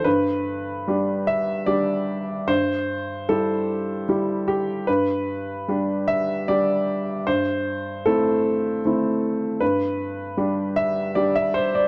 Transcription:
\new Staff \with { instrumentName = "Upright piano" } { \time 3/4 \key g \major \tempo 4 = 76 << { b'4. e''8 d''4 | c''4 a'4 r8 g'8 | b'4. e''8 d''4 | c''4 a'4 r4 |
b'4. e''8 d''16 e''16 c''16 d''16 | } \\ { g,4 <g d' g'>4 <g d' g'>4 | g,4 <g e' g'>4 <g e' g'>4 | g,4 <g d' g'>4 <g d' g'>4 | g,4 <a c' e'>4 <a c' e'>4 |
g,4 <g d' g'>4 <g d' g'>4 | } >> }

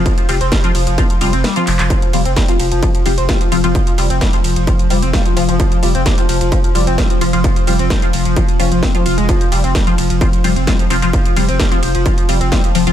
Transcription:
<<
  \new Staff \with { instrumentName = "Synth stab" } { \time 4/4 \key c \phrygian \tempo 4 = 130 r8 <f c' f'>16 r8 <f c' f'>16 r8 <f c' f'>16 r16 <f c' f'>16 r8 <f c' f'>16 r8 | r8 <f c' f'>16 r8 <f c' f'>16 r8 <f c' f'>16 r16 <f c' f'>16 r16 <f c' f'>16 r16 <f c' f'>16 <f c' f'>16 | r8 <f c' f'>16 r8 <f c' f'>16 r8 <f c' f'>16 r16 <f c' f'>16 r16 <f c' f'>16 r16 <f c' f'>16 <f c' f'>16 | r8 <f c' f'>16 r8 <f c' f'>16 r8 <f c' f'>16 r16 <f c' f'>16 r16 <f c' f'>16 r16 <f c' f'>16 <f c' f'>16 |
r8 <f c' f'>16 r8 <f c' f'>16 r8 <f c' f'>16 r16 <f c' f'>16 r8 <f c' f'>16 r8 | r8 <f c' f'>16 r8 <f c' f'>16 r8 <f c' f'>16 r16 <f c' f'>16 r16 <f c' f'>16 r16 <f c' f'>16 <f c' f'>16 | r8 <f c' f'>16 r8 <f c' f'>16 r8 <f c' f'>16 r16 <f c' f'>16 r16 <f c' f'>16 r16 <f c' f'>16 <f c' f'>16 | }
  \new Staff \with { instrumentName = "Ambient pad" } { \time 4/4 \key c \phrygian r1 | <f f'>1~ | <f f'>1~ | <f f'>1~ |
<f f'>1~ | <f f'>1~ | <f f'>1 | }
  \new Staff \with { instrumentName = "Analog synth lead" } { \clef bass \time 4/4 \key c \phrygian f16 f16 g16 c'16 g16 f16 f16 f16 f16 f16 g16 c'16 g16 f16 f16 f16 | f16 f16 g16 c'16 g16 f16 f16 f16 f16 f16 g16 c'16 g16 f16 f16 f16 | f16 f16 g16 c'16 g16 f16 f16 f16 f16 f16 g16 c'16 g16 f16 f16 f16 | f16 f16 g16 c'16 g16 f16 f16 f16 f16 f16 g16 c'16 g16 f16 f16 f16 |
f16 f16 g16 c'16 g16 f16 f16 f16 f16 f16 des'16 f16 c'16 f16 f'16 aes16 | f16 f16 g16 c'16 g16 f16 f16 f16 f16 f16 g16 c'16 g16 f16 f16 f16 | f16 f16 g16 c'16 g16 f16 f16 f16 f16 f16 g16 c'16 g16 f16 f16 f16 | }
  \new Staff \with { instrumentName = "Sub bass" } { \clef bass \time 4/4 \key c \phrygian r8 f,,16 f,,16 r8 f,,16 f,,16 r8 f,,16 f,,16 r8 f,,16 f,,16 | r8 f,,16 f,,16 r8 f,,16 f,,16 r8 f,,16 f,,16 r8 f,,16 f,,16 | r8 f,,16 f,,16 r8 f,,16 f,,16 r8 f,,16 f,,16 r8 f,,16 f,,16 | r8 f,,16 f,,16 r8 f,,16 f,,16 r8 f,,16 f,,16 r8 f,,16 f,,16 |
r8 f,,16 f,,16 r8 f,,16 f,,16 r8 f,,16 f,,16 r8 f,,16 f,,16 | r8 f,,16 f,,16 r8 f,,16 f,,16 r8 f,,16 f,,16 r8 f,,16 f,,16 | r8 f,,16 f,,16 r8 f,,16 f,,16 r8 f,,16 f,,16 r8 f,,16 f,,16 | }
  \new DrumStaff \with { instrumentName = "Drums" } \drummode { \time 4/4 <hh bd cymr>16 hh16 <hho cymr>16 hh16 <hh bd cymr sn>16 hh16 <hho cymr>16 hh16 <hh bd cymr>16 hh16 <hho cymr>16 hh16 <hho cymr sn>16 hh16 <hc hho cymr>16 <hc hh>16 | <hh bd cymr>16 hh16 <hho cymr>16 hh16 <hh bd cymr sn>16 hh16 <hho cymr>16 hh16 <hh bd cymr>16 hh16 <hho cymr>16 hh16 <hh bd cymr sn>16 hh16 <hho cymr>16 hh16 | <hh bd cymr>16 hh16 <hho cymr>16 hh16 <hh bd cymr sn>16 hh16 <hho cymr>16 hh16 <hh bd cymr>16 hh16 <hho cymr>16 hh16 <hho bd cymr sn>16 hh16 <hho cymr>16 hh16 | <hh bd cymr>16 hh16 <hho cymr>16 hh16 <hh bd cymr sn>16 hh16 <hho cymr>16 hh16 <hh bd cymr>16 hh16 <hho cymr>16 hh16 <hh bd cymr sn>16 hh16 <hho cymr>16 hh16 |
<hh bd cymr>16 hh16 <hho cymr>16 hh16 <hh bd cymr sn>16 hh16 <hho cymr>16 hh16 <hh bd cymr>16 hh16 <hho cymr>16 hh16 <hho bd cymr sn>16 hh16 <hho cymr>16 hh16 | <hh bd cymr>16 hh16 <hho cymr>16 hh16 <hh bd cymr sn>16 hh16 <hho cymr>16 hh16 <hh bd cymr>16 hh16 <hho cymr>16 hh16 <hh bd cymr sn>16 hh16 <hho cymr>16 hh16 | <hh bd cymr>16 hh16 <hho cymr>16 hh16 <hh bd cymr sn>16 hh16 <hho cymr>16 hh16 <hh bd cymr>16 hh16 <hho cymr>16 hh16 <hho bd cymr sn>16 hh16 <hho cymr>16 hh16 | }
>>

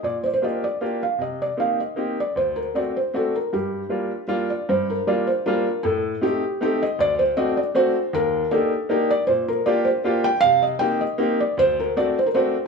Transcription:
<<
  \new Staff \with { instrumentName = "Felt piano" } { \time 3/4 \key g \minor \tempo 4 = 156 d''8 c''32 d''32 c''16 ees''8 d''8 r8 f''8 | ees''8 d''8 f''8 ees''8 r8 d''8 | c''8 bes'8 d''8 c''8 a'8 bes'8 | g'2 r8 d''8 |
c''8 bes'8 d''8 c''8 bes'4 | a'4 g'4 a'8 ees''8 | d''8 c''8 ees''8 d''8 c''4 | bes'4 a'4 bes'8 d''8 |
c''8 bes'8 d''8 c''8 r8 g''8 | f''8 ees''8 g''8 ees''8 r8 d''8 | c''8 bes'8 d''8 c''16 bes'16 c''8. r16 | }
  \new Staff \with { instrumentName = "Upright piano" } { \time 3/4 \key g \minor bes,4 <bes d' f' g'>8 r8 <bes d' f' g'>8 r8 | c4 <bes c' ees' g'>8 r8 <bes c' ees' g'>8 r8 | d,4 <a c' d' fis'>8 r8 <a c' d' fis'>8 r8 | g,4 <g bes d' f'>8 r8 <g bes d' f'>8 r8 |
g,4 <g bes d' f'>8 r8 <g bes d' f'>8 r8 | a,4 <a c' ees' g'>8 r8 <a c' ees' g'>8 r8 | d,4 <a c' d' fis'>8 r8 <a c' d' fis'>8 r8 | ees,4 <bes d' ees' g'>8 r8 <bes d' ees' g'>8 r8 |
bes,4 <bes d' f' g'>8 r8 <bes d' f' g'>8 r8 | c4 <bes c' ees' g'>8 r8 <bes c' ees' g'>8 r8 | d,4 <a c' d' fis'>8 r8 <a c' d' fis'>8 r8 | }
>>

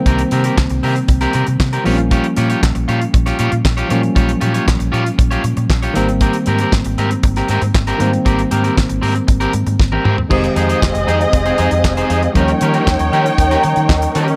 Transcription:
<<
  \new Staff \with { instrumentName = "Tonewheel organ" } { \time 4/4 \key bes \dorian \tempo 4 = 117 r1 | r1 | r1 | r1 |
r1 | <c'' ees'' f'' ees'''>1 | <bes' ees'' g'' des'''>1 | }
  \new Staff \with { instrumentName = "String section" } { \time 4/4 \key bes \dorian r1 | r1 | r1 | r1 |
r1 | <c' aes' ees''>1 | <ees' des'' g''>1 | }
  \new Staff \with { instrumentName = "Clean electric guitar" } { \time 4/4 \key bes \dorian <c' g' bes'>16 r16 <c' g' bes'>16 <c' g' bes'>16 r8 <c' g' bes'>16 r8 <c' g' bes'>16 <c' g' bes'>16 r8 <c' g' bes'>16 <f' g' des''>16 r16 | <f' g' des''>16 r16 <f' g' des''>16 <f' g' des''>16 r8 <f' g' des''>16 r8 <f' g' des''>16 <f' g' des''>16 r8 <f' g' des''>16 <f' g' des''>16 r16 | <f' g' des''>16 r16 <f' g' des''>16 <f' g' des''>16 r8 <f' g' des''>16 r8 <f' g' des''>16 r8. <f' g' des''>16 <c' g' bes'>16 r16 | <c' g' bes'>16 r16 <c' g' bes'>16 <c' g' bes'>16 r8 <c' g' bes'>16 r8 <c' g' bes'>16 <c' g' bes'>16 r8 <c' g' bes'>16 <c' g' bes'>16 r16 |
<c' g' bes'>16 r16 <c' g' bes'>16 <c' g' bes'>16 r8 <c' g' bes'>16 r8 <c' g' bes'>16 r8. <c' g' bes'>16 <c' g' bes'>16 r16 | <ees' aes' c''>16 r16 <ees' aes' c''>16 <ees' aes' c''>16 r8 <ees' aes' c''>16 r8 <ees' aes' c''>16 <ees' aes' c''>16 r8 <ees' aes' c''>16 <ees' aes' c''>16 r16 | <des' g' bes'>16 r16 <des' g' bes'>16 <des' g' bes'>16 r8 <des' g' bes'>16 r8 <des' g' bes'>16 r4 <des' g' bes'>8 | }
  \new Staff \with { instrumentName = "Tine electric piano" } { \time 4/4 \key bes \dorian r1 | r1 | r1 | r1 |
r1 | r1 | r2 r8 bes''8 ees''4 | }
  \new Staff \with { instrumentName = "Tine electric piano" } { \time 4/4 \key bes \dorian <ees g bes c'>2.~ <ees g bes c'>8 <f g bes c' des'>8~ | <f g bes c' des'>2.~ <f g bes c' des'>8 <f ges g bes des'>8~ | <f ges g bes des'>2.~ <f ges g bes des'>8 <ees g bes c'>8~ | <ees g bes c'>2.~ <ees g bes c'>8 <ees g bes c'>8~ |
<ees g bes c'>2.~ <ees g bes c'>8 r8 | <ees aes c' g'>1 | <f g bes des'>1 | }
  \new Staff \with { instrumentName = "Fingered electric bass" } { \clef bass \time 4/4 \key bes \dorian c,8 c8 c,16 c,16 c8 c,8 c16 c16 c8 bes,,8~ | bes,,8 bes,8 bes,,16 bes,,16 bes,8 bes,,8 bes,16 bes,16 bes,,8 bes,8 | bes,,8 bes,8 bes,,16 bes,,16 bes,8 bes,,8 bes,16 bes,16 bes,,8 aes,,8~ | aes,,8 aes,8 aes,,16 aes,,16 aes,8 aes,,8 aes,16 aes,16 aes,,8 aes,8 |
aes,,8 aes,8 aes,,16 aes,,16 aes,8 aes,,8 aes,16 aes,16 aes,,8 aes,8 | f,,8 f,8 f,,16 f,,16 f,8 f,,8 f,16 f,16 f,,8 f,8 | ees,8 ees8 ees,16 ees,16 ees8 ees,8 ees16 ees16 ees,8 ees8 | }
  \new DrumStaff \with { instrumentName = "Drums" } \drummode { \time 4/4 <hh bd>16 hh16 hh16 hh16 <hc bd sn>16 hh16 hho16 hh16 <hh bd>16 <hh sn>16 hh16 hh16 <hc bd sn>16 hh16 hho16 hh16 | <hh bd>16 hh16 hh16 hh16 <hc bd sn>16 hh16 hh16 hh16 <hh bd>16 <hh sn>16 hh16 hh16 <hc bd sn>16 hh16 hh16 hh16 | <hh bd>16 hh16 hh16 hh16 <hc bd sn>16 hh16 hh16 hh16 <hh bd>16 hh16 hh16 hh16 <hc bd sn>16 hh16 hh16 hh16 | <hh bd>16 hh16 hh16 hh16 <hc bd sn>16 hh16 hh16 hh16 <hh bd>16 <hh sn>16 hh16 hh16 <hc bd sn>16 hh16 hh16 hh16 |
<hh bd>16 hh16 hh16 hh16 <hc bd sn>16 hh16 hho16 hh16 <hh bd>16 hh16 hh16 hh16 <bd sn>16 tommh16 toml16 tomfh16 | <cymc bd>16 hh16 hh16 hh16 <hc bd sn>16 hh16 hh16 hh16 <hh bd>16 hh16 hh16 hh16 <hc bd sn>16 hh16 hh16 hh16 | <hh bd>16 hh16 hh16 hh16 <hc bd sn>16 hh16 hh16 hh16 <hh bd>16 <hh sn>16 hh16 hh16 <hc bd sn>16 hh16 hh16 hh16 | }
>>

